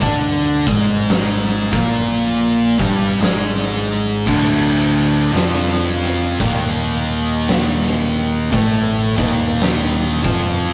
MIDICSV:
0, 0, Header, 1, 4, 480
1, 0, Start_track
1, 0, Tempo, 1063830
1, 8, Time_signature, 4, 2, 24, 8
1, 4842, End_track
2, 0, Start_track
2, 0, Title_t, "Distorted electric guitar"
2, 0, Program_c, 0, 30
2, 9, Note_on_c, 0, 50, 97
2, 9, Note_on_c, 0, 62, 107
2, 294, Note_off_c, 0, 50, 0
2, 294, Note_off_c, 0, 62, 0
2, 302, Note_on_c, 0, 44, 87
2, 306, Note_on_c, 0, 56, 101
2, 773, Note_off_c, 0, 44, 0
2, 775, Note_off_c, 0, 56, 0
2, 777, Note_on_c, 0, 46, 93
2, 783, Note_on_c, 0, 58, 97
2, 1250, Note_off_c, 0, 46, 0
2, 1253, Note_off_c, 0, 58, 0
2, 1263, Note_on_c, 0, 43, 89
2, 1266, Note_on_c, 0, 55, 95
2, 1442, Note_off_c, 0, 43, 0
2, 1444, Note_off_c, 0, 55, 0
2, 1449, Note_on_c, 0, 44, 92
2, 1452, Note_on_c, 0, 56, 93
2, 1922, Note_off_c, 0, 44, 0
2, 1923, Note_off_c, 0, 56, 0
2, 1928, Note_on_c, 0, 38, 95
2, 1932, Note_on_c, 0, 50, 109
2, 2400, Note_off_c, 0, 38, 0
2, 2402, Note_on_c, 0, 41, 89
2, 2403, Note_off_c, 0, 50, 0
2, 2405, Note_on_c, 0, 53, 98
2, 2878, Note_off_c, 0, 41, 0
2, 2880, Note_off_c, 0, 53, 0
2, 2886, Note_on_c, 0, 39, 97
2, 2889, Note_on_c, 0, 51, 112
2, 3840, Note_off_c, 0, 39, 0
2, 3841, Note_off_c, 0, 51, 0
2, 3843, Note_on_c, 0, 45, 98
2, 3846, Note_on_c, 0, 57, 107
2, 4129, Note_off_c, 0, 45, 0
2, 4131, Note_off_c, 0, 57, 0
2, 4140, Note_on_c, 0, 39, 91
2, 4145, Note_on_c, 0, 51, 104
2, 4611, Note_off_c, 0, 39, 0
2, 4613, Note_off_c, 0, 51, 0
2, 4624, Note_on_c, 0, 41, 95
2, 4627, Note_on_c, 0, 53, 103
2, 4842, Note_off_c, 0, 41, 0
2, 4842, Note_off_c, 0, 53, 0
2, 4842, End_track
3, 0, Start_track
3, 0, Title_t, "Picked electric bass"
3, 0, Program_c, 1, 34
3, 7, Note_on_c, 1, 38, 95
3, 284, Note_off_c, 1, 38, 0
3, 303, Note_on_c, 1, 32, 98
3, 764, Note_off_c, 1, 32, 0
3, 777, Note_on_c, 1, 34, 95
3, 1241, Note_off_c, 1, 34, 0
3, 1261, Note_on_c, 1, 31, 89
3, 1433, Note_off_c, 1, 31, 0
3, 1443, Note_on_c, 1, 32, 101
3, 1907, Note_off_c, 1, 32, 0
3, 1927, Note_on_c, 1, 26, 105
3, 2388, Note_off_c, 1, 26, 0
3, 2402, Note_on_c, 1, 29, 100
3, 2866, Note_off_c, 1, 29, 0
3, 2889, Note_on_c, 1, 27, 101
3, 3829, Note_off_c, 1, 27, 0
3, 3848, Note_on_c, 1, 33, 99
3, 4123, Note_off_c, 1, 33, 0
3, 4145, Note_on_c, 1, 27, 95
3, 4604, Note_off_c, 1, 27, 0
3, 4622, Note_on_c, 1, 29, 94
3, 4842, Note_off_c, 1, 29, 0
3, 4842, End_track
4, 0, Start_track
4, 0, Title_t, "Drums"
4, 8, Note_on_c, 9, 36, 104
4, 9, Note_on_c, 9, 46, 66
4, 53, Note_off_c, 9, 36, 0
4, 55, Note_off_c, 9, 46, 0
4, 302, Note_on_c, 9, 36, 108
4, 347, Note_off_c, 9, 36, 0
4, 486, Note_on_c, 9, 46, 63
4, 496, Note_on_c, 9, 38, 118
4, 532, Note_off_c, 9, 46, 0
4, 542, Note_off_c, 9, 38, 0
4, 780, Note_on_c, 9, 36, 112
4, 791, Note_on_c, 9, 38, 33
4, 825, Note_off_c, 9, 36, 0
4, 836, Note_off_c, 9, 38, 0
4, 964, Note_on_c, 9, 46, 56
4, 1009, Note_off_c, 9, 46, 0
4, 1260, Note_on_c, 9, 36, 112
4, 1306, Note_off_c, 9, 36, 0
4, 1446, Note_on_c, 9, 46, 60
4, 1456, Note_on_c, 9, 38, 111
4, 1491, Note_off_c, 9, 46, 0
4, 1501, Note_off_c, 9, 38, 0
4, 1606, Note_on_c, 9, 38, 34
4, 1651, Note_off_c, 9, 38, 0
4, 1927, Note_on_c, 9, 36, 109
4, 1927, Note_on_c, 9, 49, 99
4, 1972, Note_off_c, 9, 36, 0
4, 1972, Note_off_c, 9, 49, 0
4, 2408, Note_on_c, 9, 46, 63
4, 2418, Note_on_c, 9, 38, 108
4, 2454, Note_off_c, 9, 46, 0
4, 2463, Note_off_c, 9, 38, 0
4, 2714, Note_on_c, 9, 38, 33
4, 2759, Note_off_c, 9, 38, 0
4, 2888, Note_on_c, 9, 36, 110
4, 2889, Note_on_c, 9, 46, 57
4, 2933, Note_off_c, 9, 36, 0
4, 2935, Note_off_c, 9, 46, 0
4, 3370, Note_on_c, 9, 46, 66
4, 3380, Note_on_c, 9, 38, 111
4, 3415, Note_off_c, 9, 46, 0
4, 3425, Note_off_c, 9, 38, 0
4, 3527, Note_on_c, 9, 38, 36
4, 3573, Note_off_c, 9, 38, 0
4, 3848, Note_on_c, 9, 36, 113
4, 3848, Note_on_c, 9, 46, 67
4, 3893, Note_off_c, 9, 36, 0
4, 3893, Note_off_c, 9, 46, 0
4, 4142, Note_on_c, 9, 36, 116
4, 4187, Note_off_c, 9, 36, 0
4, 4330, Note_on_c, 9, 46, 62
4, 4340, Note_on_c, 9, 38, 115
4, 4375, Note_off_c, 9, 46, 0
4, 4385, Note_off_c, 9, 38, 0
4, 4622, Note_on_c, 9, 36, 111
4, 4667, Note_off_c, 9, 36, 0
4, 4808, Note_on_c, 9, 46, 57
4, 4842, Note_off_c, 9, 46, 0
4, 4842, End_track
0, 0, End_of_file